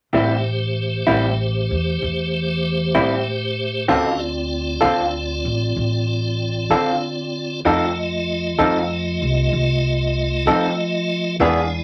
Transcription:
0.13 upright bass A1, clean electric guitar A2 G3 C4 E4, tonewheel organ A3 G4 C5
1.07 upright bass A1, clean electric guitar A2 G3 C4 E4
1.70 upright bass E2
2.02 upright bass E2
2.95 upright bass A2, clean electric guitar A2 G3 C4 E4
3.88 upright bass D2, clean electric guitar D3 C4 F4 A4, tonewheel organ C#4 F#4 D#5
4.18 tonewheel organ C4 F4 D5
4.81 upright bass D2, clean electric guitar D3 C4 F4 A4
5.45 upright bass A1
5.76 upright bass A1
6.70 upright bass D3, clean electric guitar D3 C4 F4 A4
7.65 upright bass F2, clean electric guitar F3 C4 D#4 A4, tonewheel organ A3 F4 D#5
8.59 upright bass F2, clean electric guitar F3 C4 D#4 A4
9.22 upright bass C2
9.53 upright bass C2
10.46 upright bass F3, clean electric guitar F3 C4 D#4 A4
11.39 upright bass E2, clean electric guitar E3 B3 D4 G#4, tonewheel organ G#3 E4 D5

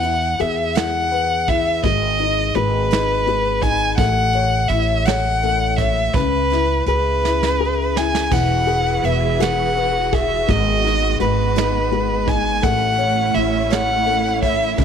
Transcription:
Already playing: upright bass E2, upright piano E3, violin F#5
0.03 upright piano E4, closed hi-hat
0.40 upright bass E2, upright piano G#4, violin E5, closed hi-hat
0.75 upright piano E4, violin F#5, snare, closed hi-hat
1.12 upright piano B4, closed hi-hat
1.48 upright piano E4, violin E5, kick, closed hi-hat
1.83 upright bass G#1, upright piano G#3, violin D#5, kick, closed hi-hat
2.19 upright piano D#4, closed hi-hat
2.55 upright bass G#1, upright piano G#3, violin B4, closed hi-hat
2.91 upright piano D#4, snare, closed hi-hat
3.27 upright piano G#3, closed hi-hat
3.62 upright piano D#4, violin G#5, kick, closed hi-hat
3.97 upright bass A1, upright piano A3, violin F#5, kick, closed hi-hat
4.33 upright piano C#5, closed hi-hat
4.69 upright bass A1, upright piano E4, violin E5, closed hi-hat
5.06 upright piano C#5, violin F#5, snare, closed hi-hat
5.43 upright piano A3, closed hi-hat
5.77 upright piano C#5, violin E5, kick, closed hi-hat
6.14 upright bass C#2, upright piano C#3, violin B4, kick, closed hi-hat
6.50 upright piano E4, snare, closed hi-hat
6.86 upright bass C#2, upright piano G#4, violin B4, closed hi-hat
7.24 upright piano E4, snare
7.43 snare
7.60 upright piano G#4
7.96 upright piano E4, violin G#5, snare
8.15 snare
8.30 upright bass E1, string section E3 E4 F#4 G#4 B4, upright piano E3, violin F#5, kick, crash
8.67 upright piano G#4, closed hi-hat
9.04 upright bass E1, upright piano B4, violin E5, closed hi-hat
9.40 upright piano G#4, violin F#5, snare, closed hi-hat
9.76 upright piano B4, closed hi-hat
10.13 upright piano G#4, violin E5, kick, closed hi-hat
10.48 upright bass G#1, upright piano G#3, string section G#3 B3, violin D#5, kick, closed hi-hat
10.84 upright piano D#4, snare, closed hi-hat
11.20 upright bass G#1, upright piano G#3, violin B4, closed hi-hat
11.56 upright piano D#4, snare, closed hi-hat
11.91 upright piano G#3, closed hi-hat
12.27 upright piano D#4, violin G#5, kick, closed hi-hat
12.62 upright bass A1, string section A3 C#4 E4, upright piano A3, violin F#5, kick, closed hi-hat
12.98 upright piano C#5, closed hi-hat
13.34 upright bass A1, upright piano E4, violin E5, closed hi-hat
13.70 upright piano C#5, violin F#5, snare, closed hi-hat
14.06 upright piano A3, closed hi-hat
14.42 upright piano C#5, violin E5, kick, closed hi-hat
14.78 upright bass C#2, upright piano C#3, string section C#3 G#3 B3 C#4, violin E5, kick, closed hi-hat

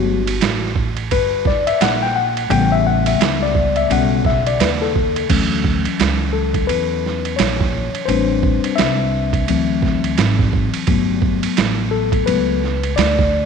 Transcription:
Already playing: upright bass G1, tine electric piano F#3 A3 B3 F#4
0.27 ride
0.41 upright bass A1, snare, hi-hat pedal, ride
0.64 snare
0.75 kick
0.97 ride
1.11 upright bass G1, tine electric piano B4, kick, ride
1.45 tine electric piano D5, kick, snare
1.67 tine electric piano E5, muted upright bass stroke, ride
1.81 upright bass A#1, tine electric piano F#5, snare, hi-hat pedal, ride
2.03 tine electric piano G5, snare
2.16 tine electric piano F#5
2.37 ride
2.49 upright bass A1, tine electric piano C#3 G3 B3 G5, ride
2.72 tine electric piano E5
2.87 tine electric piano F#5
3.06 tine electric piano E5, ride
3.20 upright bass C#2, snare, hi-hat pedal, ride
3.43 tine electric piano D5, snare
3.55 kick
3.76 tine electric piano E5, ride
3.90 upright bass B1, tine electric piano G3 B3 C#4 F#5, ride
4.25 tine electric piano E5, kick, snare
4.47 tine electric piano D5, ride
4.60 upright bass D#2, tine electric piano B4, snare, hi-hat pedal, ride
4.82 tine electric piano A4, snare
4.96 kick
5.16 ride
5.29 upright bass D2, tine electric piano E3 F#3 C#4, kick, crash, ride
5.64 kick
5.85 muted upright bass stroke, ride
6.00 upright bass C#2, snare, hi-hat pedal, ride
6.33 tine electric piano A4
6.54 kick, ride
6.67 upright bass E2, tine electric piano B4, ride
7.06 snare
7.25 ride
7.36 upright bass A#1, tine electric piano C#5, snare, hi-hat pedal, ride
7.60 kick, snare
7.95 ride
8.05 upright bass A1, tine electric piano G3 C4 D4 B4 C5, ride
8.43 kick
8.64 muted upright bass stroke, ride
8.76 upright bass C2, tine electric piano E5, snare, hi-hat pedal, ride
9.33 kick, ride
9.48 upright bass D2, tine electric piano E3 F#3 C4, ride
9.82 kick, snare
10.04 ride
10.18 upright bass G#1, snare, hi-hat pedal, ride
10.39 kick, snare
10.53 kick
10.74 muted upright bass stroke, ride
10.87 upright bass G1, tine electric piano F#3 A3 B3, kick, ride
11.22 kick
11.43 muted upright bass stroke, ride
11.57 upright bass A1, snare, hi-hat pedal, ride
11.91 tine electric piano A4
12.12 kick, ride
12.26 upright bass C#2, tine electric piano F#3 A3 B3 B4, ride
12.64 snare
12.83 ride
12.96 upright bass D2, tine electric piano D5, snare, hi-hat pedal, ride
13.19 kick, snare

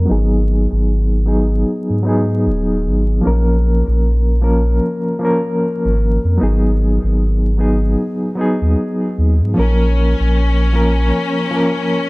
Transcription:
Already playing: reed electric piano F3 A#3 C#4 A#4
0.06 sub bass G#1, reed electric piano F#3 B3 D#4
0.11 reed electric piano G#4
0.72 sub bass G#1
1.26 reed electric piano F#3 B3 D#4 G#4
1.90 sub bass G#2
2.03 reed electric piano F#3 B3 D#4
2.08 reed electric piano G#4
2.46 sub bass D#1
2.86 sub bass G#1
3.21 reed electric piano F3 A#3 C#4
3.26 sub bass A#1, reed electric piano A#4
3.87 sub bass A#1
4.42 reed electric piano F3 A#3 C#4 A#4
5.19 reed electric piano F3 A#3 C#4
5.25 reed electric piano A#4
5.85 sub bass G#1
6.24 sub bass F2
6.38 sub bass G#1, reed electric piano F#3 B3 D#4
6.43 reed electric piano G#4
7.03 sub bass G#1
7.58 reed electric piano F#3 B3 D#4 G#4
8.35 reed electric piano F#3 B3 D#4
8.41 reed electric piano G#4
8.61 sub bass D#2
9.18 sub bass D#2
9.40 sub bass G#2
9.54 sub bass A#1, reed electric piano F3 A#3 C#4, string section C#4
9.59 reed electric piano A#4
10.19 sub bass A#1
10.73 reed electric piano F3 A#3 C#4 A#4
11.51 reed electric piano F3 A#3 C#4
11.56 reed electric piano A#4

